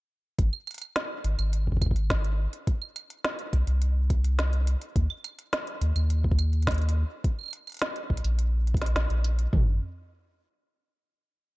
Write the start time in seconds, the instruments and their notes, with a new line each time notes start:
0.39 analog synth bass G#1, kick, closed hi-hat
0.53 claves
0.67 closed hi-hat, claves
0.71 closed hi-hat
0.74 closed hi-hat
0.78 closed hi-hat
0.82 closed hi-hat, claves
0.96 snare, closed hi-hat
1.24 analog synth bass G#1, closed hi-hat
1.39 analog synth bass G#1, closed hi-hat, claves
1.53 closed hi-hat
1.67 kick
1.72 kick
1.77 kick
1.82 kick, closed hi-hat, claves
1.86 kick
1.91 kick
1.96 closed hi-hat
2.10 kick, snare, closed hi-hat
2.24 closed hi-hat
2.53 closed hi-hat
2.67 kick, closed hi-hat
2.82 claves
2.96 closed hi-hat, claves
3.10 closed hi-hat
3.24 snare, closed hi-hat
3.39 closed hi-hat
3.53 analog synth bass C2, kick, closed hi-hat
3.67 analog synth bass C2, closed hi-hat
3.82 closed hi-hat
4.10 kick, closed hi-hat
4.24 closed hi-hat
4.39 snare, closed hi-hat
4.53 closed hi-hat
4.67 closed hi-hat
4.82 closed hi-hat
4.96 analog synth bass D#2, kick, closed hi-hat
5.10 claves
5.24 closed hi-hat, claves
5.39 closed hi-hat
5.53 snare, closed hi-hat
5.67 closed hi-hat
5.81 analog synth bass D#2, closed hi-hat
5.96 analog synth bass D#2, closed hi-hat, claves
6.10 closed hi-hat
6.24 kick
6.31 kick
6.39 closed hi-hat, claves
6.53 closed hi-hat
6.62 closed hi-hat
6.67 kick, snare, closed hi-hat
6.71 closed hi-hat
6.74 closed hi-hat
6.78 closed hi-hat
6.82 closed hi-hat
6.89 closed hi-hat
7.24 kick, closed hi-hat
7.39 claves
7.41 claves
7.43 claves
7.46 claves
7.48 claves
7.51 closed hi-hat, claves
7.67 closed hi-hat, claves
7.70 closed hi-hat
7.72 closed hi-hat
7.74 closed hi-hat
7.77 closed hi-hat
7.79 snare, closed hi-hat
7.82 closed hi-hat
7.96 closed hi-hat
8.10 analog synth bass A#1, kick
8.17 closed hi-hat
8.24 analog synth bass A#1, closed hi-hat
8.39 closed hi-hat
8.67 closed hi-hat
8.74 kick, closed hi-hat
8.81 snare, closed hi-hat
8.86 closed hi-hat
8.96 analog synth bass A#1, snare, closed hi-hat
9.10 analog synth bass A#1, closed hi-hat
9.24 closed hi-hat
9.39 closed hi-hat
9.53 analog synth bass G#1, kick, floor tom